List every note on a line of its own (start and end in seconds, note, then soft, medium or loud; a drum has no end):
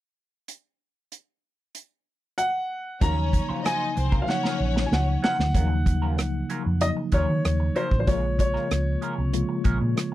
0.48 closed hi-hat medium
1.12 closed hi-hat soft
1.75 closed hi-hat soft
2.38 3.03 F#5 medium
2.38 closed hi-hat soft
3.01 3.38 D#2 medium
3.01 3.96 C#3 medium
3.01 3.96 F3 medium
3.01 3.20 F#3 medium
3.01 3.96 F#3 medium
3.01 3.96 A#3 medium
3.01 3.61 C#4 medium
3.01 3.17 C#4 medium
3.01 3.96 D#4 medium
3.01 3.17 F4 medium
3.01 3.16 A#4 medium
3.01 3.61 C#5 medium
3.01 3.67 A#5 medium
3.01 kick loud
3.01 closed hi-hat medium
3.17 muted clean electric guitar stroke soft
3.33 muted clean electric guitar stroke soft
3.33 kick medium
3.33 closed hi-hat medium
3.49 3.63 F#3 soft
3.49 3.64 C#4 soft
3.49 3.64 F4 soft
3.49 3.63 C5 soft
3.49 muted fingered electric bass stroke soft
3.65 3.83 F#3 medium
3.65 3.83 C#4 medium
3.65 3.90 D#4 medium
3.65 3.84 F4 medium
3.65 3.84 C5 medium
3.65 3.90 D#5 medium
3.65 4.23 G#5 medium
3.65 cross-stick medium
3.65 closed hi-hat medium
3.96 4.21 C2 medium
3.96 4.22 C4 medium
3.96 4.22 C5 medium
3.96 muted clean electric guitar stroke soft
3.96 closed hi-hat medium
4.12 4.27 F#3 soft
4.12 4.27 C#4 soft
4.12 4.27 F4 soft
4.12 4.26 A#4 medium
4.12 kick medium
4.22 4.28 F5 medium
4.27 5.22 C#3 medium
4.27 5.22 F3 medium
4.27 5.22 F#3 medium
4.27 5.22 A#3 medium
4.27 5.19 C#4 medium
4.27 5.23 D#4 medium
4.27 5.19 C#5 loud
4.27 4.81 F#5 medium
4.27 muted clean electric guitar stroke soft
4.27 snare soft
4.43 4.59 F#3 medium
4.43 4.59 C#4 medium
4.43 4.60 F4 medium
4.43 4.60 A#4 medium
4.43 snare soft
4.60 4.84 A#1 medium
4.60 muted clean electric guitar stroke soft
4.76 muted clean electric guitar stroke soft
4.76 snare medium
4.86 4.92 G#5 soft
4.92 5.16 C#2 medium
4.92 5.22 F#5 medium
4.92 muted clean electric guitar stroke soft
4.92 snare medium
5.22 5.37 F#3 soft
5.22 5.37 C#4 soft
5.22 5.38 F4 soft
5.22 5.38 A#4 medium
5.22 6.86 F#5 loud
5.22 snare medium
5.39 5.51 D2 medium
5.39 muted clean electric guitar stroke soft
5.39 snare medium
5.54 6.18 D#2 medium
5.54 6.49 C#3 medium
5.54 6.49 F3 medium
5.54 5.73 F#3 medium
5.54 6.49 F#3 medium
5.54 6.49 A#3 medium
5.54 5.71 C#4 medium
5.54 5.62 C#4 medium
5.54 5.70 F4 medium
5.54 5.69 A#4 medium
5.54 kick loud
5.54 closed hi-hat medium
5.62 6.52 D#4 medium
5.71 muted clean electric guitar stroke soft
5.86 muted clean electric guitar stroke soft
5.86 kick medium
5.86 closed hi-hat medium
6.02 6.17 F#3 soft
6.02 6.17 C#4 soft
6.02 6.17 F4 soft
6.02 6.16 A#4 soft
6.18 6.42 C#2 medium
6.18 muted clean electric guitar stroke soft
6.18 cross-stick medium
6.18 closed hi-hat medium
6.49 6.64 F#3 soft
6.49 6.64 C#4 soft
6.49 6.64 F4 soft
6.49 6.64 A#4 medium
6.49 closed hi-hat medium
6.66 6.90 F2 medium
6.81 7.75 C#3 medium
6.81 7.75 F3 medium
6.81 7.75 F#3 medium
6.81 7.75 A#3 medium
6.81 7.76 D#4 medium
6.81 6.88 D#5 medium
6.81 muted clean electric guitar stroke soft
6.81 closed hi-hat medium
6.97 muted clean electric guitar stroke soft
7.12 7.25 D#2 medium
7.12 7.31 F#3 medium
7.12 7.29 C#4 medium
7.12 7.28 F4 medium
7.12 7.27 A#4 medium
7.12 7.78 C#5 medium
7.12 kick medium
7.12 closed hi-hat medium
7.29 7.41 D#3 medium
7.29 muted clean electric guitar stroke soft
7.44 7.69 D#2 medium
7.44 muted clean electric guitar stroke soft
7.44 cross-stick medium
7.44 closed hi-hat medium
7.60 muted clean electric guitar stroke soft
7.76 7.94 F#3 medium
7.76 7.92 C#4 medium
7.76 7.91 F4 medium
7.76 7.90 A#4 medium
7.76 7.98 C5 medium
7.76 closed hi-hat medium
7.91 8.04 A1 medium
7.91 muted clean electric guitar stroke soft
7.91 kick medium
8.00 8.07 C5 medium
8.07 8.55 A#1 medium
8.07 9.01 C#3 medium
8.07 9.01 F3 medium
8.07 8.25 G#3 medium
8.07 9.01 G#3 medium
8.07 9.02 A#3 medium
8.07 8.23 C#4 medium
8.07 9.02 F4 medium
8.07 8.22 F4 medium
8.07 8.22 A#4 medium
8.07 8.39 C#5 medium
8.07 kick medium
8.07 closed hi-hat medium
8.23 muted clean electric guitar stroke soft
8.38 10.14 C#5 medium
8.38 muted clean electric guitar stroke soft
8.38 kick medium
8.38 closed hi-hat medium
8.54 8.69 G#3 soft
8.54 8.69 C#4 soft
8.54 8.69 F4 soft
8.54 8.69 A#4 soft
8.54 cross-stick soft
8.71 8.95 C#2 medium
8.71 cross-stick medium
8.71 closed hi-hat medium
9.01 9.16 G#3 soft
9.01 9.16 C#4 soft
9.01 9.17 F4 soft
9.01 9.16 A#4 medium
9.01 closed hi-hat medium
9.17 9.42 C2 medium
9.17 muted clean electric guitar stroke soft
9.33 10.14 C#3 medium
9.33 10.14 F3 medium
9.33 10.14 G#3 medium
9.33 10.14 A#3 medium
9.33 10.14 F4 medium
9.33 muted clean electric guitar stroke soft
9.33 closed hi-hat medium
9.49 muted clean electric guitar stroke soft
9.64 9.77 A#1 medium
9.64 9.83 G#3 medium
9.64 9.80 C#4 medium
9.64 9.80 F4 medium
9.64 9.79 A#4 medium
9.64 kick medium
9.64 closed hi-hat medium
9.81 9.93 A#2 medium
9.81 muted clean electric guitar stroke soft
9.96 muted clean electric guitar stroke soft
9.96 cross-stick medium
9.96 closed hi-hat medium